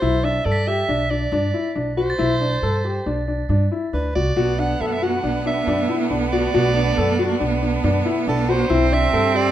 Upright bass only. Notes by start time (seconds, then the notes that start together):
0.02 B1
0.45 G2
0.89 B1
1.32 G2
1.76 B1
2.19 B1
2.62 G2
3.06 B1
3.49 G2
3.93 D2
4.16 C2
4.36 B1
4.80 F#2
5.23 B1
5.67 F#2
6.10 B1
6.55 B1
6.98 F#2
7.41 B1
7.84 F#2
8.27 B1
8.70 B1
9.13 G2